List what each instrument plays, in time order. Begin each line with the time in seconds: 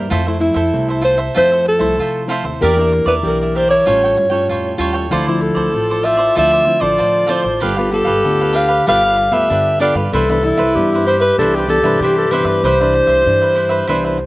0.10 upright bass F2, nylon-string guitar F3 A3 C4 E4, cavaquinho F4 A4 C5 E5
0.27 nylon-string guitar A3 C4 E4, cavaquinho A4 C5 E5
0.40 nylon-string guitar A3 C4 E4, alto saxophone E4, muted cavaquinho stroke
0.54 upright bass F2, cavaquinho A4 C5 E5
0.73 upright bass C2, nylon-string guitar C3 A3 C4 E4
0.89 cavaquinho A4 C5 E5
1.01 cavaquinho F4 A4 C5 E5, alto saxophone C5
1.18 cavaquinho A4 C5 E5
1.34 upright bass F2, nylon-string guitar F3 A3 C4 E4, cavaquinho F4 A4 C5 E5, alto saxophone C5
1.52 cavaquinho A4 C5 E5
1.66 alto saxophone A4, muted cavaquinho stroke
1.79 upright bass C2, nylon-string guitar A3 C4 E4, cavaquinho A4 C5 E5
1.98 nylon-string guitar C3, upright bass F3, cavaquinho F4 A4 C5 E5
2.28 nylon-string guitar A3 C4 E4, cavaquinho F4 A4 C5 E5
2.43 upright bass D#2, cavaquinho A4 C5 E5
2.61 upright bass E2, nylon-string guitar E3 A#3 D4 G4, cavaquinho G4 A#4 D5 E5, alto saxophone A#4
2.77 nylon-string guitar A#3 D4 G4, cavaquinho D5 E5
2.81 cavaquinho A#4
2.92 muted cavaquinho stroke
3.06 upright bass E2, cavaquinho A#4 D5 E5, alto saxophone B4
3.23 upright bass B1, nylon-string guitar E3 A#3 D4 G4
3.27 alto saxophone A#4
3.41 cavaquinho A#4 D5 E5
3.55 cavaquinho G4 A#4 D5 E5, alto saxophone C5
3.69 cavaquinho A#4 D5 E5, alto saxophone C#5
3.86 upright bass A1, nylon-string guitar A2 G3 C#4 F4, cavaquinho F4 A4 C#5 G5
4.04 cavaquinho A4 C#5 G5
4.17 upright bass G2, muted cavaquinho stroke
4.30 nylon-string guitar G3 C#4 F4, cavaquinho A4 C#5 G5
4.47 upright bass F2, nylon-string guitar A2, cavaquinho F4 A4 C#5
4.52 cavaquinho G5
4.78 upright bass D#2, nylon-string guitar G3 C#4 F4, cavaquinho F4 A4 C#5 G5
4.93 cavaquinho A4 C#5 G5
5.10 upright bass D2, nylon-string guitar D3 F3 C4 E4, clarinet E4, cavaquinho F4 A4 C5 D5
5.27 nylon-string guitar F3 C4 E4, cavaquinho A4 C5 D5
5.41 alto saxophone A4, muted cavaquinho stroke
5.55 upright bass D2, cavaquinho A4 C5 D5
5.73 upright bass A1, nylon-string guitar A2 F3 C4, clarinet F4
5.90 cavaquinho A4 C5 D5
6.03 cavaquinho F4 A4 C5 D5, alto saxophone E5
6.17 cavaquinho A4 C5 D5
6.35 upright bass D2, nylon-string guitar D3 F3 C4 E4, cavaquinho F4 A4 C5 D5, alto saxophone E5
6.52 cavaquinho A4 C5 D5
6.65 nylon-string guitar F3 C4 E4, muted cavaquinho stroke
6.80 upright bass A1, nylon-string guitar F3 C4, cavaquinho A4 C5 D5, alto saxophone D5
6.98 nylon-string guitar A2, upright bass D3, cavaquinho F4 A4 C5 D5
7.27 nylon-string guitar F3 C4 E4, cavaquinho F4 A4 C5 D5
7.31 alto saxophone C5
7.43 upright bass A1, cavaquinho A4 C5 D5
7.60 upright bass G1, nylon-string guitar G3 B3 F4 A4, cavaquinho D4 G4 B4 F5, clarinet G4
7.76 nylon-string guitar B3 F4 A4, cavaquinho G4 B4 F5
7.91 nylon-string guitar B3 F4 A4, alto saxophone A4, muted cavaquinho stroke
8.05 upright bass G1, cavaquinho G4 B4 F5
8.24 upright bass D2, nylon-string guitar D3 B3 F4 A4
8.40 cavaquinho G4 B4 F5
8.53 cavaquinho D4 G4 B4 F5, alto saxophone F5
8.68 cavaquinho G4 B4 F5
8.86 upright bass G1, nylon-string guitar G3 B3 F4 A4, cavaquinho D4 G4 B4 F5, alto saxophone F5
9.04 cavaquinho G4 B4 F5
9.17 muted cavaquinho stroke
9.32 upright bass D2, nylon-string guitar B3 F4 A4, cavaquinho G4 B4 F5, alto saxophone E5
9.49 upright bass G2, nylon-string guitar D3, cavaquinho D4 G4 B4
9.80 nylon-string guitar B3 F4 A4, cavaquinho D4 G4 B4 F5, alto saxophone D5
9.95 upright bass G2, cavaquinho G4 B4 F5
10.12 upright bass C2, nylon-string guitar C3 E3 B3 D4, cavaquinho E4 B4 C5 E5, clarinet A4
10.29 nylon-string guitar E3 B3 D4, cavaquinho B4 C5 E5
10.42 nylon-string guitar E3 B3 D4, alto saxophone E4, muted cavaquinho stroke
10.57 upright bass C2, cavaquinho B4 C5 E5
10.75 nylon-string guitar G2 E3 B3 D4, upright bass G2, clarinet G4
10.93 cavaquinho B4 C5 E5
11.06 cavaquinho E4 B4 C5 E5, alto saxophone C5
11.18 alto saxophone B4 C5, cavaquinho B4 C5 E5
11.38 upright bass C2, nylon-string guitar C3 E3 B3 D4, cavaquinho E4 B4 C5 E5, alto saxophone A4
11.55 alto saxophone G4, cavaquinho B4 E5
11.59 cavaquinho C5
11.68 nylon-string guitar E3 B3 D4, alto saxophone A4, muted cavaquinho stroke
11.82 upright bass G2, nylon-string guitar E3 B3 D4, cavaquinho B4 E5
11.87 cavaquinho C5
12.00 nylon-string guitar G2, upright bass C3, cavaquinho E4 B4 C5 E5, alto saxophone G4
12.17 alto saxophone A4
12.31 nylon-string guitar E3 B3 D4, cavaquinho E4 B4 C5 E5, alto saxophone B4
12.44 upright bass G2, cavaquinho B4 C5 E5
12.63 upright bass C2, nylon-string guitar C3, cavaquinho E4 B4 C5 E5, alto saxophone C5
12.80 nylon-string guitar E3 D4, cavaquinho B4 C5 E5
12.94 muted cavaquinho stroke
13.07 upright bass C2, cavaquinho C5 E5
13.26 upright bass G2, nylon-string guitar G2 E3 D4
13.41 cavaquinho B4 C5 E5
13.55 cavaquinho E4 B4 C5 E5
13.69 cavaquinho B4 C5 E5
13.87 upright bass C2, nylon-string guitar C3 E3 B3 D4, cavaquinho E4 B4 C5 E5
14.04 cavaquinho B4 C5 E5
14.18 muted cavaquinho stroke